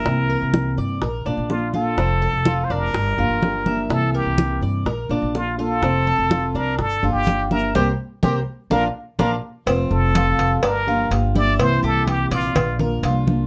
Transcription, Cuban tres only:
\new Staff \with { instrumentName = "Cuban tres" } { \time 4/4 \key f \major \tempo 4 = 125 e''8 bes'4 d''8 bes'8 d'4 f'8 | c'8 a'8 f'8 d'4 f'4 e''8~ | e''8 bes'4 d''8 bes'8 d'4 f'8 | c'8 a'8 f'8 d'4 f'4 e''8 |
<g' bes' c''>8 r8 <g' bes' c''>8 r8 <d' f' bes'>8 r8 <d' f' bes'>8 r8 | c'4 f'4 d'8 f'4 e'8~ | e'8 g'4 d''4 bes'8 f'4 | }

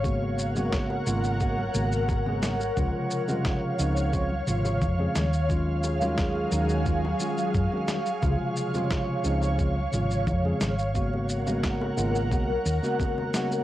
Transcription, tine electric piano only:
\new Staff \with { instrumentName = "Tine electric piano" } { \clef bass \time 4/4 \key des \major \tempo 4 = 88 <des aes bes ces' ges'>8. <des aes bes ces' ges'>8. <des aes bes ces' f'>8 <des aes bes ces' ges'>16 r16 <des aes bes ces' ges'>8. <des aes bes ces' aes'>8 r16 | <c des f aes f'>8. <c des f aes f'>8. <des f aes c' ees'>8 <des f aes c' f'>16 r16 <c des f aes f'>8. <des f aes c' aes'>8 r16 | <ees ges aes des' f'>8. <ees ges aes des' f'>8. <ees ges aes des' ees'>8 <ees ges aes des' f'>16 r16 <ees ges aes des' f'>8. <ees ges aes des' ges'>8 r16 | <c des f aes f'>8. <c des f aes f'>8. <des f aes c' ees'>8 <des f aes c' f'>16 r16 <c des f aes f'>8. <des f aes c' aes'>8 r16 |
<des aes bes ces' ges'>8. <des aes bes ces' ges'>8. <des aes bes ces' f'>8 <des aes bes ces' ges'>16 r8 <des aes bes ces' ges'>8. <des aes bes ces' ges'>8 | }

